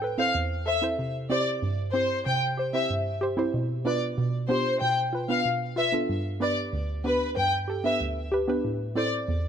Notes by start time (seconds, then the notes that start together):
Already playing: A2
0.02 A4 B4
0.18 C4 E4 A4 C5 F5
0.35 E2
0.66 A4 C5 E5
0.82 C4 E4 A4 C5
0.99 C3
1.30 C4 E4 G4 C5 D5
1.62 G2
1.93 C4 E4 G4 C5
2.26 C3 G5
2.57 G4 C5
2.73 C4 E4 G4 C5 E5
2.90 G2
3.21 G4 C5
3.37 C4 E4 G4 C5
3.54 B2
3.85 B3 D4 F4 B4 D5
4.18 B2
4.49 B3 D4 F4 G4 C5
4.82 B2 G5
5.13 F4 B4
5.29 B3 D4 F4 B4 F5
5.45 B2
5.76 F4 B4 E5
5.92 B3 D4 F4 A4
6.09 G2
6.40 B3 D4 G4 B4 D5
6.73 D2
7.04 B3 D4 G4 B4
7.37 G2 G5
7.68 G4 A4
7.84 B3 D4 G4 B4 E5
8.01 D2
8.32 G4 B4
8.48 B3 D4 G4 B4
8.65 A2
8.95 C4 E4 A4 C5 D5
9.28 E2